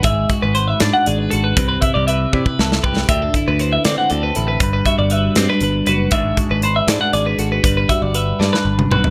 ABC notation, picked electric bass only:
X:1
M:6/8
L:1/16
Q:3/8=79
K:Em
V:1 name="Picked electric bass" clef=bass
^G,,,2 z G,,,3 ^G,, z G,,,2 G,,,2 | C,,2 z C,,3 C, z C,,2 C,,2 | D,,2 z D,,3 D, z D,,2 A,,,2 | G,,,2 z G,,,3 G,, z G,,,2 F,,,2 |
^G,,,2 z G,,,3 ^G,, z G,,,2 G,,,2 | G,,,2 z G,,,3 G,, z G,,,2 B,,,2 |]